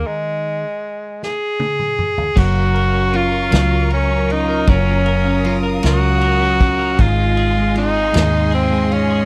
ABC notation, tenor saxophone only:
X:1
M:6/8
L:1/8
Q:3/8=52
K:Ebmix
V:1 name="Tenor saxophone"
A,3 A3 | [K:Gblyd] G2 F2 D E | D2 z G3 | F2 E2 C D |]